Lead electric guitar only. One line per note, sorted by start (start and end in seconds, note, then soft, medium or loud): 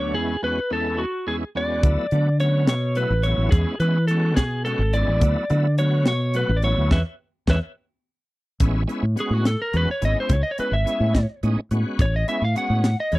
0.00 0.14 C#5 medium
0.14 0.41 G#4 medium
0.44 0.72 B4 medium
0.73 1.01 A4 medium
0.98 1.25 F#4 medium
1.28 1.35 G#4 medium
1.57 2.37 D5 medium
2.40 2.66 C#5 medium
2.69 2.98 C#5 medium
2.97 3.26 B4 medium
3.23 3.50 C#5 loud
3.51 3.80 G#4 medium
3.80 4.07 B4 medium
4.07 4.36 A4 medium
4.36 4.64 G#4 medium
4.65 4.94 A4 medium
4.94 5.74 D5 loud
5.79 6.05 C#5 medium
6.08 6.36 C#5 loud
6.36 6.57 B4 medium
6.57 6.63 D5 medium
6.64 6.91 C#5 loud
6.92 7.01 B4 medium
6.92 7.01 C#5 medium
6.92 7.01 E5 medium
7.50 7.58 B4 medium
7.50 7.58 C#5 medium
7.50 7.58 E5 medium
9.20 9.34 G#4 medium
9.34 9.46 F#4 medium
9.47 9.60 A4 medium
9.62 9.77 A#4 medium
9.77 9.89 B4 medium
9.91 10.03 C#5 medium
10.05 10.17 D#5 loud
10.20 10.34 C5 medium
10.34 10.41 C#5 medium
10.43 10.50 D#5 medium
10.51 10.59 C#5 medium
10.60 10.73 B4 medium
10.73 11.26 E5 medium
12.02 12.14 C#5 medium
12.16 12.28 D#5 medium
12.29 12.42 E5 medium
12.45 12.57 F5 medium
12.58 12.97 F#5 loud
13.00 13.13 D#5 medium
13.15 13.19 C#5 medium